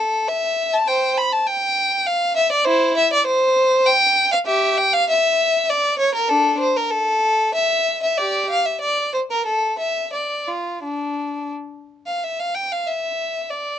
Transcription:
0.00 0.27 A4 medium
0.28 0.73 E5 medium
0.74 0.88 A5 medium
0.87 1.15 C5 medium
0.87 1.18 G5 medium
1.18 1.33 B5 medium
1.33 1.48 A5 medium
1.47 2.07 G5 medium
2.07 2.36 F5 medium
2.37 2.51 E5 medium
2.52 2.66 D5 medium
2.65 2.94 E4 medium
2.65 2.96 C5 medium
2.97 3.11 E5 medium
3.13 3.27 D5 medium
3.27 3.85 C5 medium
3.87 4.32 G5 loud
4.32 4.38 F5 medium
4.46 4.75 G4 medium
4.46 4.77 E5 medium
4.78 4.93 G5 medium
4.93 5.08 F5 loud
5.10 5.68 E5 medium
5.69 5.99 D5 medium
5.99 6.14 C#5 medium
6.15 6.29 A#4 medium
6.29 6.58 D4 medium
6.29 6.60 A4 medium
6.60 6.75 C5 medium
6.77 6.92 A#4 medium
6.91 7.54 A4 medium
7.55 8.01 E5 medium
8.03 8.18 E5 medium
8.18 8.47 G4 medium
8.18 8.49 D5 medium
8.50 8.65 F5 medium
8.66 8.81 E5 medium
8.81 9.12 D5 medium
9.14 9.20 C5 medium
9.31 9.46 A#4 medium
9.46 9.78 A4 medium
9.79 10.12 E5 medium
10.13 10.48 D5 medium
10.48 10.84 F4 soft
10.84 11.53 D4 soft
12.07 12.22 F5 soft
12.24 12.40 E5 medium
12.40 12.56 F5 medium
12.55 12.71 G5 medium
12.72 12.88 F5 medium
12.87 13.50 E5 medium
13.50 13.79 D5 medium

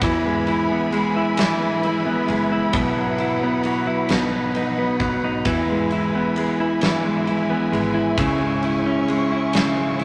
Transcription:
0.00 2.24 E2 medium
0.00 1.39 E3 medium
0.00 0.11 F#3 medium
0.00 0.71 B3 medium
0.00 0.23 B3 medium
0.00 0.11 D#4 medium
0.00 4.06 E4 medium
0.00 8.15 B4 medium
0.00 2.71 G#5 medium
0.00 8.14 B5 medium
0.00 kick loud
0.00 ride medium
0.04 0.48 E4 medium
0.23 0.92 G#3 medium
0.23 0.69 B3 medium
0.47 1.81 E4 medium
0.47 1.16 E4 medium
0.47 ride soft
0.70 1.14 B3 medium
0.70 2.06 B3 medium
0.91 1.59 G#3 medium
0.91 2.25 G#4 medium
0.91 ride soft
1.14 1.37 B3 medium
1.14 1.40 E4 medium
1.37 2.83 E3 medium
1.37 1.59 B3 medium
1.37 1.84 E4 medium
1.37 snare loud
1.37 ride medium
1.60 2.27 G#3 medium
1.60 2.04 B3 medium
1.82 2.82 E4 medium
1.82 2.51 E4 medium
1.82 ride soft
2.05 2.50 B3 medium
2.05 3.43 B3 medium
2.27 2.71 F#1 loud
2.27 2.83 G#3 medium
2.27 2.82 G#4 medium
2.27 ride soft
2.50 3.17 B3 medium
2.50 2.74 E4 medium
2.72 4.05 B1 medium
2.72 4.10 B2 medium
2.72 2.95 F#3 medium
2.72 3.19 E4 medium
2.72 4.09 F#5 medium
2.72 kick loud
2.72 ride medium
2.95 3.40 F#3 medium
2.95 3.64 F#3 medium
3.18 4.54 B3 medium
3.18 3.86 E4 medium
3.18 ride soft
3.40 3.84 F#3 medium
3.40 4.78 B3 medium
3.63 4.19 F#3 medium
3.63 4.18 E4 medium
3.63 ride soft
3.85 4.08 F#3 medium
3.85 4.10 E4 medium
4.09 4.96 B1 medium
4.09 5.56 B2 medium
4.09 4.30 F#3 medium
4.09 5.45 D#4 medium
4.09 4.55 D#4 medium
4.09 5.45 F#5 medium
4.09 snare loud
4.09 ride medium
4.32 4.76 F#3 soft
4.32 5.00 F#3 soft
4.55 5.45 B3 medium
4.55 5.23 D#4 medium
4.55 ride soft
4.77 5.21 F#3 medium
4.77 6.15 B3 medium
4.99 5.43 B1 medium
4.99 5.55 F#3 medium
4.99 5.54 D#4 medium
4.99 kick medium
4.99 ride soft
5.22 5.54 F#3 medium
5.22 5.46 D#4 medium
5.45 7.68 E2 medium
5.45 6.82 E3 medium
5.45 5.66 B3 medium
5.45 10.04 E4 medium
5.45 5.92 E4 medium
5.45 10.04 G#5 medium
5.45 kick loud
5.45 ride medium
5.67 6.38 G#3 medium
5.67 6.11 B3 medium
5.90 7.27 E4 medium
5.90 6.60 E4 medium
5.90 ride soft
6.12 6.58 B3 medium
6.12 7.49 B3 medium
6.36 7.05 G#3 medium
6.36 7.72 G#4 medium
6.36 ride soft
6.59 6.80 B3 medium
6.59 6.83 E4 medium
6.81 8.18 E3 medium
6.81 7.02 B3 medium
6.81 7.28 E4 medium
6.81 snare loud
6.81 ride medium
7.03 7.72 G#3 medium
7.03 7.48 B3 medium
7.27 8.63 E4 medium
7.27 7.94 E4 medium
7.27 ride soft
7.49 7.94 B3 medium
7.49 8.27 B3 medium
7.72 8.15 G#1 medium
7.72 8.40 G#3 medium
7.72 9.08 G#4 medium
7.72 ride soft
7.94 8.27 B3 medium
7.94 8.19 E4 medium
8.18 10.04 C#2 loud
8.18 9.54 C#3 medium
8.18 9.52 G#3 medium
8.18 8.64 E4 medium
8.18 10.04 C#5 medium
8.18 10.04 C#6 medium
8.18 kick loud
8.18 ride medium
8.40 9.09 G#3 medium
8.40 8.85 C#4 medium
8.63 9.99 E4 medium
8.63 9.32 E4 medium
8.63 ride soft
8.86 9.30 C#4 medium
8.86 10.04 C#4 medium
9.08 9.76 G#3 medium
9.08 10.04 G#4 medium
9.08 ride soft
9.31 9.76 C#4 medium
9.31 9.56 E4 medium
9.53 10.04 C#3 medium
9.53 10.04 G#3 medium
9.53 9.99 E4 medium
9.53 snare loud
9.53 ride medium
9.77 10.04 G#3 medium
9.77 10.04 C#4 medium
9.99 10.04 E4 medium
9.99 ride soft

